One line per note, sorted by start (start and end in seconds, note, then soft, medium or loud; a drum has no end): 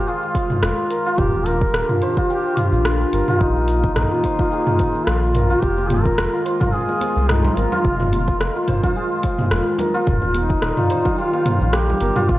0.00 10.03 D#3 medium
0.00 1.14 G#3 medium
0.00 1.06 F4 loud
0.00 1.14 F4 medium
0.00 0.90 A#4 medium
0.00 0.34 C5 loud
0.07 0.63 F4 medium
0.07 2.36 G#4 medium
0.07 shaker soft
0.22 shaker soft
0.34 2.02 C5 medium
0.34 kick loud
0.34 closed hi-hat medium
0.34 shaker medium
0.50 mid tom medium
0.50 shaker soft
0.62 0.72 F1 loud
0.62 1.20 F4 loud
0.62 cross-stick loud
0.62 shaker soft
0.78 shaker soft
0.90 3.13 A#4 medium
0.90 closed hi-hat medium
0.90 shaker medium
1.06 1.89 F4 loud
1.06 shaker soft
1.18 1.66 D#1 loud
1.18 3.38 D4 medium
1.18 3.38 G4 medium
1.18 1.48 G4 loud
1.18 kick loud
1.18 mid tom medium
1.18 shaker soft
1.34 shaker soft
1.46 2.02 A#4 loud
1.46 closed hi-hat medium
1.46 shaker medium
1.61 kick loud
1.61 shaker soft
1.73 1.83 D#1 loud
1.73 cross-stick medium
1.73 shaker soft
1.89 2.17 F4 medium
1.89 mid tom medium
1.89 shaker soft
2.02 2.57 C5 loud
2.02 closed hi-hat medium
2.02 shaker medium
2.17 3.28 F4 loud
2.17 kick loud
2.17 shaker soft
2.29 2.58 G4 medium
2.29 4.58 G4 medium
2.29 shaker soft
2.45 shaker soft
2.57 3.41 F4 loud
2.57 4.24 C5 medium
2.57 closed hi-hat medium
2.57 mid tom medium
2.57 shaker medium
2.72 3.05 A#1 medium
2.72 shaker soft
2.85 cross-stick loud
2.85 shaker soft
3.00 shaker soft
3.13 3.22 G1 medium
3.13 5.34 A#4 medium
3.13 closed hi-hat medium
3.13 shaker medium
3.28 4.11 F4 loud
3.28 mid tom medium
3.28 shaker soft
3.39 3.89 A#1 loud
3.39 5.60 A#3 medium
3.39 3.93 D#4 loud
3.39 10.03 F4 medium
3.39 kick loud
3.39 shaker soft
3.56 shaker soft
3.68 closed hi-hat medium
3.68 shaker medium
3.84 kick loud
3.84 shaker soft
3.94 4.05 A#1 loud
3.94 5.06 D#4 loud
3.94 cross-stick medium
3.94 mid tom medium
3.94 shaker soft
4.11 4.39 F4 medium
4.11 shaker soft
4.24 4.79 C5 medium
4.24 kick medium
4.24 closed hi-hat medium
4.24 shaker medium
4.39 5.50 F4 loud
4.39 kick loud
4.39 shaker soft
4.51 6.72 G#4 medium
4.51 shaker soft
4.67 mid tom medium
4.67 shaker soft
4.79 6.45 C5 medium
4.79 kick loud
4.79 closed hi-hat medium
4.79 shaker medium
4.94 shaker soft
5.05 5.55 A#1 loud
5.05 5.63 F4 loud
5.05 cross-stick loud
5.05 shaker soft
5.22 shaker soft
5.35 7.56 A#4 medium
5.35 closed hi-hat medium
5.35 mid tom medium
5.35 shaker medium
5.50 6.33 F4 loud
5.50 shaker soft
5.61 6.11 F1 loud
5.61 10.03 G#3 medium
5.61 5.90 G4 loud
5.61 kick loud
5.61 shaker soft
5.78 high bongo soft
5.78 shaker soft
5.89 6.46 A#4 loud
5.89 closed hi-hat medium
5.89 mid tom medium
5.89 high conga medium
5.89 shaker medium
6.06 kick loud
6.06 high bongo soft
6.06 shaker soft
6.18 6.28 F1 loud
6.18 cross-stick loud
6.18 shaker soft
6.33 6.60 F4 medium
6.33 shaker soft
6.45 7.00 C5 medium
6.45 closed hi-hat medium
6.45 shaker medium
6.60 7.72 F4 loud
6.60 kick loud
6.60 mid tom medium
6.60 low conga medium
6.60 shaker soft
6.66 6.75 A#4 medium
6.73 8.96 G#4 medium
6.73 7.30 G#4 loud
6.73 shaker soft
6.89 high bongo medium
6.89 shaker soft
7.00 8.68 C5 medium
7.00 closed hi-hat medium
7.00 high bongo soft
7.00 high conga medium
7.00 shaker medium
7.16 7.50 C2 loud
7.16 high bongo soft
7.16 shaker soft
7.29 7.58 D#4 loud
7.29 cross-stick loud
7.29 mid tom medium
7.29 shaker soft
7.45 low conga loud
7.45 shaker soft
7.56 7.67 G#1 medium
7.56 8.68 F4 medium
7.56 9.79 A#4 medium
7.56 closed hi-hat medium
7.56 high conga medium
7.56 shaker medium
7.72 8.55 F4 loud
7.72 low conga medium
7.72 shaker soft
7.84 8.33 F1 loud
7.84 kick loud
7.84 shaker soft
8.00 mid tom medium
8.00 high bongo medium
8.00 shaker soft
8.12 closed hi-hat medium
8.12 high conga medium
8.12 shaker medium
8.28 kick loud
8.28 high bongo soft
8.28 shaker soft
8.40 8.50 F1 loud
8.40 cross-stick medium
8.40 shaker soft
8.56 8.83 F4 medium
8.56 shaker soft
8.68 9.23 C5 loud
8.68 kick medium
8.68 closed hi-hat medium
8.68 mid tom medium
8.68 shaker medium
8.83 9.94 F4 loud
8.83 kick loud
8.83 low conga medium
8.83 shaker soft
8.96 11.24 G#4 medium
8.96 shaker soft
9.11 shaker soft
9.23 10.90 C5 medium
9.23 kick loud
9.23 closed hi-hat medium
9.23 shaker medium
9.39 mid tom medium
9.39 high conga medium
9.39 shaker soft
9.51 9.61 F1 loud
9.51 cross-stick loud
9.51 shaker soft
9.67 shaker soft
9.78 12.01 A#4 medium
9.78 closed hi-hat medium
9.78 high bongo medium
9.78 low conga medium
9.78 shaker medium
9.94 10.77 F4 loud
9.94 high bongo medium
9.94 shaker soft
10.07 10.55 D#1 loud
10.07 12.27 D#3 medium
10.07 12.27 G3 medium
10.07 12.27 D#4 medium
10.07 kick loud
10.07 mid tom medium
10.07 shaker soft
10.22 high bongo medium
10.22 shaker soft
10.34 11.14 D#4 medium
10.34 closed hi-hat loud
10.34 high conga medium
10.34 shaker medium
10.49 kick loud
10.49 high bongo medium
10.49 shaker soft
10.62 10.72 D#1 loud
10.62 cross-stick medium
10.62 shaker soft
10.77 11.05 F4 medium
10.77 mid tom medium
10.77 shaker soft
10.90 11.45 C5 loud
10.90 closed hi-hat medium
10.90 shaker medium
11.05 12.16 F4 loud
11.05 kick loud
11.05 low conga medium
11.05 shaker soft
11.18 11.75 F4 loud
11.18 12.39 G4 medium
11.18 shaker soft
11.33 high bongo medium
11.33 shaker soft
11.46 12.39 C5 medium
11.46 closed hi-hat loud
11.46 mid tom medium
11.46 high bongo soft
11.46 high conga medium
11.46 shaker medium
11.61 11.94 A#1 medium
11.61 high bongo soft
11.61 shaker soft
11.73 12.30 G4 loud
11.73 cross-stick loud
11.73 shaker soft
11.89 low conga medium
11.89 shaker soft
12.01 12.11 G1 medium
12.01 12.39 A#4 medium
12.01 closed hi-hat medium
12.01 high conga medium
12.01 shaker medium
12.16 12.39 F4 loud
12.16 mid tom medium
12.16 low conga medium
12.16 shaker soft
12.29 12.39 A#1 loud
12.29 12.39 D#3 medium
12.29 12.39 A#3 medium
12.29 12.39 F4 loud
12.29 12.39 F4 medium
12.29 kick loud
12.29 shaker soft